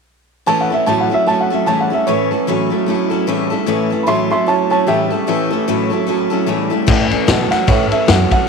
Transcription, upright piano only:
0.47 0.60 A5 loud
0.61 0.74 F#5 medium
0.74 0.87 E5 medium
0.87 1.00 A5 medium
1.00 1.14 F#5 medium
1.14 1.27 E5 medium
1.28 1.40 A5 medium
1.41 1.54 F#5 medium
1.54 1.67 E5 medium
1.67 1.80 A5 medium
1.80 1.94 F#5 medium
1.94 2.07 E5 medium
2.07 2.85 C#5 medium
4.03 4.29 E5 medium
4.03 4.06 B5 medium
4.08 4.30 C6 medium
4.31 4.47 E5 medium
4.31 4.48 C6 medium
4.47 4.69 C#5 medium
4.47 4.70 A5 medium
4.71 4.86 C#5 medium
4.71 4.87 A5 medium
4.87 5.64 G4 medium
4.87 5.66 E5 loud
7.51 7.67 F#5 medium
7.68 7.91 C#5 medium
7.92 8.08 E5 medium
8.09 8.31 F#5 medium
8.32 8.48 F#5 medium

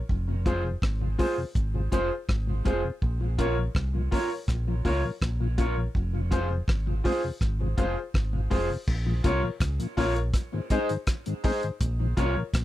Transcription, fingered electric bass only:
0.10 0.74 F1 loud
0.83 1.15 G#1 medium
1.56 1.88 G#1 medium
1.93 2.09 F1 medium
2.29 2.61 G#1 medium
2.67 2.83 F1 medium
3.03 3.67 A#1 loud
3.76 4.08 C2 medium
4.49 4.81 A#1 loud
4.86 5.02 C#2 medium
5.22 5.87 A#1 medium
5.96 6.60 F1 loud
6.68 7.01 G#1 medium
7.41 7.74 G#1 loud
7.78 7.95 F1 medium
8.15 8.47 G#1 medium
8.52 8.68 F1 medium
8.88 9.20 A#1 loud
9.25 9.42 C2 loud
9.61 9.78 C#2 loud
9.98 10.30 A#1 medium
11.81 12.13 A#1 loud
12.18 12.34 C2 loud
12.54 12.65 A#1 medium

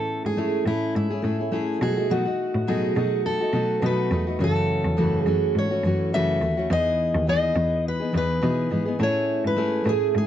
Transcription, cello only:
0.00 0.16 A2 medium
0.25 0.48 G#2 medium
0.66 0.89 A2 medium
0.95 1.19 G#2 medium
1.24 1.71 A2 medium
1.81 2.41 B2 medium
2.55 2.78 A2 medium
2.96 3.33 B2 medium
3.53 3.77 B2 medium
3.82 4.06 B2 medium
4.11 4.35 E2 medium
4.39 4.76 F#2 medium
4.85 5.08 E2 medium
5.26 5.50 F#2 medium
5.56 5.83 G#2 medium
5.83 6.31 F#2 medium
6.41 6.65 D#2 medium
6.70 7.06 E2 medium
7.15 7.38 D#2 medium
7.56 7.93 E2 medium
8.14 8.38 E2 medium
8.43 8.71 B2 medium
8.72 8.95 G#2 medium
9.00 9.36 A2 medium
9.44 9.68 G#2 medium
9.86 10.09 A2 medium
10.15 10.27 G#2 medium

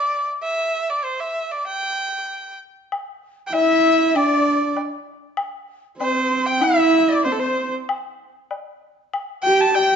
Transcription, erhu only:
0.00 0.28 D5 medium
0.43 0.91 E5 medium
0.89 1.05 D5 medium
1.04 1.21 C5 medium
1.20 1.53 E5 medium
1.51 1.66 D5 medium
1.67 2.56 G5 medium
3.47 3.54 G5 medium
3.53 4.18 E5 medium
4.16 4.77 D5 medium
6.00 6.48 C5 medium
6.46 6.64 G5 medium
6.63 7.10 E5 medium
7.08 7.24 D5 medium
7.24 7.33 C5 medium
7.32 7.41 A4 medium
7.39 7.73 C5 medium
9.43 9.62 G5 medium
9.61 9.76 A5 medium
9.74 9.96 G5 medium

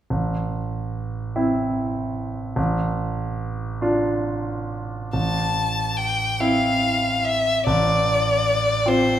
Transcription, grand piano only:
0.10 2.53 A1 soft
1.36 2.53 C4 soft
1.36 2.53 E4 soft
2.56 5.10 A1 soft
3.81 5.10 D4 soft
3.81 5.10 F4 soft
5.13 7.61 A1 soft
6.40 7.62 C4 soft
6.40 7.62 E4 soft
7.67 9.19 A1 soft
8.86 9.19 C4 soft
8.86 9.19 F4 soft

